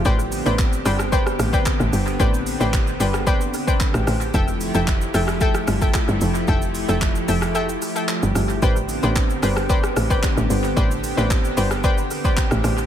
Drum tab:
HH |--o---o---o---o-|--o---o---o---o-|--o---o---o---o-|--o---o---o---o-|
SH |xxxxxxxxxxxxxxxx|xxxxxxxxxxxxxxxx|xxxxxxxxxxxxxxxx|xxxxxxxxxxxxxxxx|
CP |----x-------x---|----x-------x---|----x-------x---|----x-------x---|
SD |------rr-rr-----|-------r-----rr-|------rr-rr-----|-------r------r-|
BD |o---o---o--oo---|o---o---o--oo---|o---o---o--oo---|o---o-----------|

HH |--o---o---o---o-|--o---o---o---o-|
SH |xxxxxxxxxxxxxxxx|xxxxxxxxxxxxxxxx|
CP |----x-------x---|----x-------x---|
SD |------rr-rr-----|-------r-----rr-|
BD |o---o---o--oo---|o---o---o--oo---|